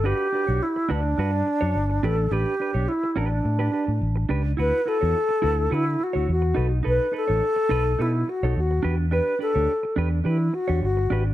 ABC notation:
X:1
M:4/4
L:1/16
Q:1/4=106
K:D
V:1 name="Clean electric guitar"
[DFB]2 [DFB] [DFc] z2 [DFB]2 [DFB]2 z [DFc] z2 [DGB]2 | [DGB]2 [DGB] [DGc] z2 [DGB]2 z [DGB] [DGB] z3 [DGB]2 | [EFB]2 [EFB] [EFc] z2 [EFB]2 [EFB]2 z [EFc] z2 [^DAB]2 | [^DAB]2 [DAB] [DAc] z2 [DAB]2 [DAB]2 z [DAc] z2 [=DGB]2 |
[DGB]2 [DGB] [DGc] z2 [DGB]2 [DGB]2 z [DGc] z2 [DGB]2 |]
V:2 name="Alto flute"
G4 E2 D8 A2 | G4 E2 D8 z2 | B2 A6 E2 F2 F3 z | B2 A6 E2 F2 F3 z |
B2 A4 z2 E2 F2 F3 z |]
V:3 name="Fingered electric bass" clef=bass
G,,, z2 B,,, z2 D,,2 G,,2 z F,, G,,,2 A,,,2 | A,,, z2 B,,, z2 A,,,2 A,,2 z A,, A,,,2 C,,2 | D,, z2 E,, z2 D,,2 D,2 z D,, E,,2 B,,,2 | B,,, z2 A,,, z2 B,,,2 B,,2 z B,,, ^D,,2 E,,2- |
E,, z2 D,, z2 E,,2 E,2 z E,, G,,,2 ^G,,,2 |]